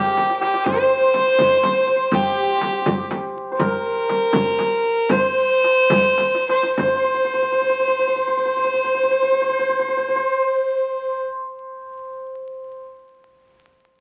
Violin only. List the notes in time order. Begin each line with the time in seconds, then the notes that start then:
Already playing: G4
0.41 G4
0.65 C5
2.13 G4
3.59 A#4
5.11 C5
6.51 C5
6.77 C5